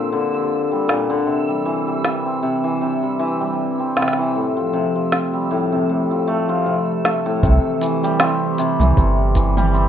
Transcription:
Already playing: A#2 D3 F3 A#3 C4 G4 E6
0.12 D3
0.33 F3
0.72 G3
0.88 A#2, snare
1.10 D3
1.26 C3 E3 C4
1.48 G3
1.65 E3
1.87 G3
2.05 snare
2.26 C4
2.43 C3
2.64 E3
2.81 C3
3.03 G3
3.19 E3
3.41 G3
3.79 C4
3.97 C3, snare
4.02 snare
4.08 snare
4.13 snare
4.18 E3
4.35 A2 F3 A3 G4
4.57 F3
4.73 C3
4.96 F3
5.12 snare
5.33 G3
5.51 A2
5.72 C3
5.89 A2
6.11 F3
6.27 A3
6.49 F3
6.66 C3
7.05 A3, snare
7.26 A2
7.43 C2 C3 E3 C4 G4, kick, shaker
7.81 E3, closed hi-hat, shaker
8.03 G3, shaker
8.20 C4, snare, shaker
8.58 C3, closed hi-hat, shaker
8.80 C2 E3, mid tom, shaker
8.97 G1 C3, kick, shaker
9.35 E3, kick, closed hi-hat, shaker
9.57 G3, mid tom, shaker
9.74 C4, shaker

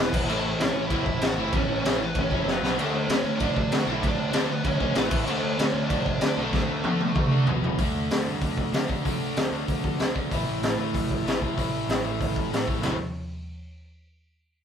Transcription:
Already playing: E2 B2 E3 B3 B4
0.13 E1 E2 B2 E3, kick, crash
0.25 A1 A2 E3 A3
0.30 A4, crash
0.43 A2 E3
0.59 A1 A2 E3 C#4 C#5, snare, crash
0.73 A1 A2 E3
0.85 E4 E5
0.90 E2 A2 E3 A3 E4, kick, crash
0.94 E5
1.05 E1 A2 E3, kick
1.22 A1 A2 E3 F#4, snare, crash
1.26 F#5
1.36 G1 A2 E3 A3 E4
1.41 E5
1.52 E2 A2 E3 A3 C#4, kick, crash
1.59 C#5
1.68 A1 A2 E3
1.78 C#4 C#5
1.83 A1 A2 E3 A3, snare, crash
2.00 A2 E3 B3
2.05 B4
2.15 F1 A2 E3, kick, crash
2.19 C#4 C#5
2.31 A2 E3 A3, kick
2.45 F#1 F#2 C#3 F#3, snare
2.49 B3 B4
2.62 B1 B2 F#3 B3, snare
2.78 D2 D3 A3 D4, crash
2.84 A4
2.94 D3 A3
3.09 D2 D3 A3 C#4, snare, crash
3.16 C#5
3.23 D2 D3 A3
3.35 D4 D5
3.40 A2 D3 A3 D4, kick, crash
3.46 D5
3.57 A1 D3 A3, kick
3.71 D2 D3 A3 F#4 F#5, snare, crash
3.87 B1 D3 A3 D4 E4
3.93 E5
4.03 A2 D3 A3 D4, kick, crash
4.09 D5
4.17 D2 D3 A3
4.30 D2 D3 D4 D5, crash
4.34 A3 D4, snare
4.49 D3 A3 B3
4.53 B4
4.64 D2 D3 A3 C#4 C#5, kick, crash
4.80 D3 A3 D4, kick
4.95 A1 A2 E3 A3 B3 B4, snare, crash
5.10 A1 A2 E3 A3, kick, crash
5.25 D2 D3 A3 D4, crash
5.30 A4
5.41 D3 A3
5.57 D2 D3 A3, snare, crash
5.62 C#4 C#5
5.72 D2 D3 A3
5.84 D4 D5
5.89 A2 D3 A3 D4, kick, crash
6.06 A1 D3 A3, kick
6.21 D2 D3 A3, snare, crash
6.26 D4 D5
6.37 B1 D3 A3 D4
6.42 A3 A4
6.52 A2 D3 A3 D4, kick, snare
6.69 D2 D3 A3
6.84 D2 D3 A3 D4, high tom
7.00 D3 A3, high tom
7.15 D2 D3 A3, kick, mid tom
7.31 D3 A3 D4
7.47 B1 B2 F#3 B3, floor tom
7.62 E1 E2 B2 E3, floor tom
7.78 D2 D3 A3 D4, kick, open hi-hat
7.95 D2
8.10 D2, snare, open hi-hat
8.26 G2 D3 A3 D4
8.42 D2, kick, open hi-hat
8.57 D2, kick
8.72 D2 D3 A3 D4, snare, open hi-hat
8.87 D2 D3 A3 D4, kick
9.04 D2 D3 A3 D4, kick, open hi-hat
9.36 D2, snare, open hi-hat
9.52 D2 D3 A3 D4
9.68 D2, kick, open hi-hat
9.84 D2, kick
9.99 D2 D3 A3 D4, snare, open hi-hat
10.14 D3 A3 D4, kick
10.31 A1 A2 E3 A3, kick, open hi-hat
10.47 A1
10.62 A1, snare, open hi-hat
10.78 D2 A2 E3 A3
10.94 A1, kick, open hi-hat
11.10 A1, kick
11.25 A1 A2 E3 A3, snare, open hi-hat
11.42 A1 A2 E3 A3, kick
11.55 A1 A2 E3 A3, kick, open hi-hat
11.88 A1, snare, open hi-hat
12.03 A1 A2 E3 A3
12.20 A1, kick, open hi-hat
12.36 A1, kick
12.51 A1 A2 E3 A3, snare, open hi-hat
12.67 A2 E3 A3, kick
12.81 A1 A2 E3 A3, snare, floor tom, crash

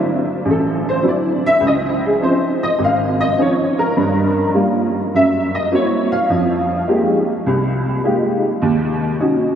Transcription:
Already playing: F#3 C4 D4 E4
0.45 A1
0.51 A4
0.89 C5
1.03 F#3 C4 D4 E4
1.08 D5
1.46 E5
1.60 C#2
1.67 D#5
2.06 G#4
2.20 F3 C4 C#4 D#4 C5
2.63 D#5
2.79 G#1
2.84 F5
3.21 D#5
3.38 F3 C4 C#4 D#4 C#5
3.79 A#4
3.97 G2
4.54 G3 A#3 F4
5.14 F#2 E5
5.55 D#5
5.71 A#3 C4 E4 F#4 C#5
6.12 F5
6.29 F2 F3
6.88 G#3 A#3 D#4 F4 G4
7.46 C2 C3
8.04 G#3 A#3 D#4 F4 G4
8.62 D#2
9.20 C#4 D#4 F#4

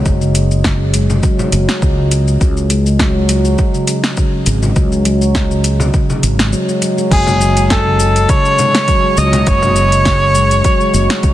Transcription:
Already playing: F#3 G#3 F#4
0.06 F#1, kick, shaker
0.21 C#3, shaker
0.35 closed hi-hat, shaker
0.51 shaker
0.64 C#3, kick, snare, shaker
0.93 G#3, closed hi-hat, shaker
1.10 frame drum, shaker
1.23 F#3, kick, shaker
1.39 G#3, frame drum, shaker
1.52 F#1 F#3, closed hi-hat, shaker
1.68 G#3, snare, shaker
1.82 C#2, kick, shaker
1.98 C#3
2.11 closed hi-hat, shaker
2.28 shaker
2.41 C#2 C#3, kick, shaker
2.57 shaker
2.70 G#3, closed hi-hat, shaker
2.86 shaker
2.99 F#3, kick, snare, shaker
3.16 G#3
3.29 F#3, closed hi-hat, shaker
3.45 G#3, shaker
3.58 kick, shaker
3.74 C#3, shaker
3.87 closed hi-hat, shaker
4.04 snare, shaker
4.17 C#3, kick, shaker
4.46 G#1 G#3, closed hi-hat, shaker
4.63 frame drum, shaker
4.76 C#2 F#3, kick, shaker
4.92 G#3, shaker
5.05 F#3, closed hi-hat, shaker
5.21 G#3, shaker
5.35 kick, snare, shaker
5.51 C#3, shaker
5.64 closed hi-hat, shaker
5.80 frame drum, shaker
5.94 C#3, kick, shaker
6.10 frame drum, shaker
6.23 G#1 G#3, closed hi-hat, shaker
6.39 snare, shaker
6.52 F#3, shaker
6.69 G#3, shaker
6.82 F#3, closed hi-hat, shaker
6.98 G#3, shaker
7.11 F#1 F#3 G#4, kick, closed hi-hat, crash, shaker
7.27 G#3, frame drum, shaker
7.41 F#3, shaker
7.57 G#3, closed hi-hat, shaker
7.70 A4, kick, snare, closed hi-hat, shaker
7.86 C#3
8.00 shaker
8.16 closed hi-hat, shaker
8.29 C#3 C#5, kick, closed hi-hat, shaker
8.45 shaker
8.58 G#3, frame drum, shaker
8.75 snare, closed hi-hat, shaker
8.88 F#3, kick, closed hi-hat, shaker
9.04 G#3
9.17 C#2 F#3 D#5, shaker
9.33 G#3, closed hi-hat, frame drum, shaker
9.47 F#1 C#5, kick, closed hi-hat, shaker
9.62 C#3, frame drum, shaker
9.76 shaker
9.92 closed hi-hat, shaker
10.05 C#3, kick, snare, closed hi-hat, shaker
10.35 G#3, shaker
10.51 closed hi-hat, shaker
10.64 F#3, kick, closed hi-hat, shaker
10.81 G#3, shaker
10.94 F#1 F#3, shaker
11.10 G#3, snare, closed hi-hat, shaker
11.23 C#2, kick, closed hi-hat, shaker

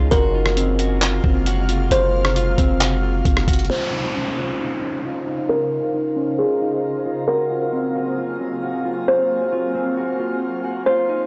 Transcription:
Already playing: C#2 C#4 D#4 F4
0.11 F#1 C3 G#3 A#3 F#4 A#4 F5, kick, closed hi-hat
0.34 F4
0.46 cross-stick
0.56 C4, closed hi-hat
0.79 F#4, closed hi-hat
1.01 F4, clap, closed hi-hat
1.24 F#1 C4, kick
1.46 F#4, closed hi-hat
1.69 F4, closed hi-hat
1.91 F#1 C5, closed hi-hat
2.25 cross-stick
2.36 F4, closed hi-hat
2.58 F#1 C4, kick, closed hi-hat
2.81 F#4, clap, closed hi-hat
3.03 F4
3.25 F#1, kick, closed hi-hat
3.37 cross-stick
3.48 F#1 F#4, kick, closed hi-hat
3.53 closed hi-hat
3.59 closed hi-hat
3.65 closed hi-hat
3.70 C#3 D#4 F4 C5 F5, downlifter
3.93 D#4
4.15 C#4
4.37 F4
4.59 D#4
4.82 C#4
5.05 F4
5.27 D#4
5.49 A#4
5.94 D#4
6.16 C#4
6.39 F4 G#4
6.62 D#4
7.06 F4
7.28 F#3 A#3 C4 F#4 G#4 A#4
7.51 F4
7.73 C4
7.96 F#4
8.18 F4
8.41 C4
8.63 F#4
8.85 F4
9.08 C5
9.52 F4
9.75 C4
9.97 F#4
10.19 F4
10.64 F#4
10.86 D#3 C#4 F4 C5 F5
11.09 D#4

